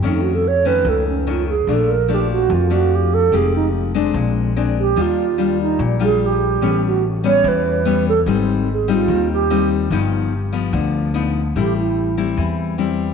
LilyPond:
<<
  \new Staff \with { instrumentName = "Alto flute" } { \time 4/4 \key g \phrygian \tempo 4 = 146 \tuplet 3/2 { ees'8 fis'8 a'8 } cis''8 b'8 a'8 cis'8 f'8 aes'8 | a'8 bes'8 g'8 fis'8 f'8 fis'8 g'8 a'8 | aes'8 ees'8 r2 r8 g'8 | f'4. ees'8 r8 aes'8 g'4~ |
g'8 fis'8 r8 cis''8 b'4. a'8 | r4 aes'8 f'4 g'4 r8 | r1 | \key a \minor g'8 e'4 r2 r8 | }
  \new Staff \with { instrumentName = "Nylon-string guitar" } { \time 4/4 \key g \phrygian << { <ees a cis'>4 r8 <ees a cis'>4. <ees a cis'>8 r8 | <f a d'>8 r8 <f a d'>4. <f a d'>4. | <aes ees' g'>4. <aes c' d'>4. <aes c' d'>4 | <g d' f'>8 r8 <g d' f'>4. <g d' f'>4. |
<g b cis'>4 r8 <g b cis'>4. <g b cis'>8 r8 | <g c' ees'>4 r8 <g c' ees'>4. <g c' ees'>4 | <f b ees'>4 r8 <f b>4. <f b ees'>8 r8 | \key a \minor <g c' e'>4. <g c' e'>4. <g c' e'>4 | } \\ { f,2 f,2 | bes,2 f,2 | f2 bes,2 | ees2 bes,2 |
a,2 e2 | aes,2 ees2 | g,2 d2 | a,2 e2 | } >> }
  \new Staff \with { instrumentName = "Upright bass" } { \clef bass \time 4/4 \key g \phrygian f,2 cis,2 | bes,,2 f,2 | f,,2 bes,,2 | ees,2 bes,,2 |
a,,2 e,2 | aes,,2 ees,2 | g,,2 d,2 | \key a \minor a,,2 e,2 | }
>>